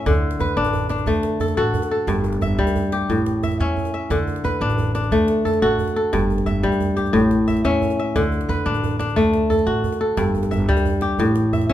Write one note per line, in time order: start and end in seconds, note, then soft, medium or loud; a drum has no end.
0.00 0.11 A2 medium
0.00 0.12 C#4 medium
0.00 0.30 G4 medium
0.00 0.93 E5 medium
0.06 0.37 D2 medium
0.06 2.13 D3 medium
0.06 djembe slap medium
0.06 djembe bass medium
0.15 djembe slap soft
0.31 djembe slap medium
0.39 0.55 D2 medium
0.39 1.63 B4 medium
0.39 djembe slap soft
0.39 djembe bass medium
0.57 1.03 A1 medium
0.57 0.90 D4 medium
0.65 djembe slap medium
0.65 djembe tone medium
0.73 djembe bass medium
0.89 2.58 D4 medium
0.89 djembe slap medium
0.98 djembe slap soft
0.98 djembe tone medium
1.06 1.53 D2 medium
1.06 3.07 A3 medium
1.06 djembe slap soft
1.06 djembe bass medium
1.23 djembe slap medium
1.40 1.57 A4 medium
1.40 djembe tone medium
1.40 djembe bass medium
1.48 djembe slap medium
1.57 1.73 A1 medium
1.57 2.14 F#4 medium
1.57 1.91 A4 medium
1.57 djembe slap soft
1.74 djembe bass medium
1.82 djembe slap medium
1.82 djembe tone medium
1.91 3.23 A4 medium
2.07 2.39 G1 loud
2.07 3.14 G2 medium
2.07 djembe slap medium
2.07 djembe bass medium
2.24 djembe slap soft
2.24 djembe tone medium
2.33 djembe slap medium
2.41 2.57 G1 medium
2.41 3.43 E5 medium
2.41 djembe bass medium
2.58 3.05 D2 medium
2.58 3.14 G3 medium
2.67 djembe slap medium
2.67 djembe tone medium
2.75 djembe bass medium
2.92 4.34 G4 medium
2.92 djembe slap medium
3.01 djembe slap soft
3.01 djembe tone medium
3.09 3.56 A1 medium
3.09 4.15 A2 medium
3.09 djembe slap soft
3.09 djembe bass medium
3.26 djembe slap medium
3.35 djembe slap soft
3.43 3.60 E5 medium
3.43 djembe slap soft
3.43 djembe tone medium
3.43 djembe bass medium
3.51 djembe slap medium
3.60 3.75 E2 medium
3.60 4.17 C#4 medium
3.60 3.93 E5 medium
3.77 djembe slap soft
3.77 djembe bass medium
3.85 djembe slap soft
3.85 djembe tone soft
3.93 4.97 E5 medium
3.93 djembe slap soft
4.02 djembe slap soft
4.10 4.41 D2 medium
4.10 6.17 D3 medium
4.10 djembe slap medium
4.10 djembe bass medium
4.19 djembe slap soft
4.27 djembe tone medium
4.36 djembe slap medium
4.44 4.59 D2 medium
4.44 5.67 B4 medium
4.44 djembe slap soft
4.44 djembe bass medium
4.61 5.07 A1 medium
4.61 4.94 D4 medium
4.70 djembe slap medium
4.70 djembe tone medium
4.78 djembe bass medium
4.95 6.63 D4 medium
4.95 djembe slap medium
5.03 djembe tone soft
5.11 5.58 D2 medium
5.11 7.12 A3 medium
5.11 djembe slap soft
5.11 djembe bass medium
5.28 djembe slap medium
5.45 5.62 A4 medium
5.45 djembe tone medium
5.45 djembe bass medium
5.54 djembe slap soft
5.62 5.77 A1 medium
5.62 6.19 F#4 medium
5.62 5.96 A4 medium
5.62 djembe slap soft
5.79 djembe bass medium
5.88 djembe slap soft
5.88 djembe tone soft
5.96 7.28 A4 medium
6.04 djembe slap soft
6.13 6.44 G1 loud
6.13 7.19 G2 medium
6.13 djembe slap medium
6.13 djembe bass medium
6.22 djembe slap soft
6.30 djembe tone medium
6.38 djembe slap soft
6.46 6.62 G1 medium
6.46 7.47 E5 medium
6.46 djembe slap soft
6.46 djembe bass medium
6.63 7.10 D2 medium
6.63 7.19 G3 medium
6.72 djembe slap medium
6.72 djembe tone medium
6.80 djembe bass medium
6.97 8.38 G4 medium
6.97 djembe slap medium
7.06 djembe slap soft
7.06 djembe tone soft
7.13 7.60 A1 medium
7.13 8.20 A2 medium
7.13 djembe slap soft
7.13 djembe bass medium
7.31 djembe slap medium
7.48 7.64 E5 medium
7.48 djembe bass medium
7.57 djembe slap medium
7.64 7.80 E2 medium
7.64 8.22 C#4 medium
7.64 7.99 E5 medium
7.64 djembe slap soft
7.82 djembe bass medium
7.90 djembe slap soft
7.90 djembe tone medium
7.99 9.03 E5 medium
8.07 djembe slap soft
8.16 8.46 D2 loud
8.16 10.22 D3 medium
8.16 djembe slap medium
8.16 djembe bass medium
8.23 djembe slap soft
8.32 djembe tone medium
8.41 djembe slap medium
8.49 8.64 D2 medium
8.49 9.72 B4 medium
8.49 djembe slap soft
8.49 djembe bass medium
8.66 9.12 A1 medium
8.66 8.99 D4 medium
8.74 djembe slap medium
8.74 djembe tone medium
8.83 djembe bass medium
8.99 10.67 D4 medium
8.99 djembe slap medium
9.09 djembe slap soft
9.09 djembe tone medium
9.16 9.63 D2 medium
9.16 11.16 A3 medium
9.16 djembe slap soft
9.16 djembe bass medium
9.33 djembe slap medium
9.50 10.00 A4 medium
9.50 djembe tone medium
9.50 djembe bass medium
9.59 djembe slap medium
9.66 9.82 A1 medium
9.66 10.23 F#4 medium
9.66 djembe slap soft
9.84 djembe bass medium
9.92 djembe slap medium
9.92 djembe tone medium
10.01 11.32 A4 medium
10.09 djembe slap soft
10.17 10.48 G1 loud
10.17 11.23 G2 medium
10.17 djembe slap medium
10.17 djembe bass medium
10.34 djembe tone medium
10.43 djembe slap medium
10.51 10.66 G1 medium
10.51 11.53 E5 medium
10.51 djembe bass medium
10.68 11.15 D2 medium
10.68 11.23 G3 medium
10.77 djembe slap medium
10.77 djembe tone medium
10.85 djembe bass medium
11.01 11.73 G4 medium
11.01 djembe slap medium
11.18 11.65 A1 medium
11.18 11.73 A2 medium
11.18 djembe bass medium
11.35 djembe slap medium
11.45 djembe slap soft
11.53 11.69 E5 medium
11.53 djembe tone medium
11.53 djembe bass medium
11.61 djembe slap soft
11.69 11.73 E2 medium
11.69 11.73 C#4 medium
11.69 11.73 E5 medium
11.69 djembe slap soft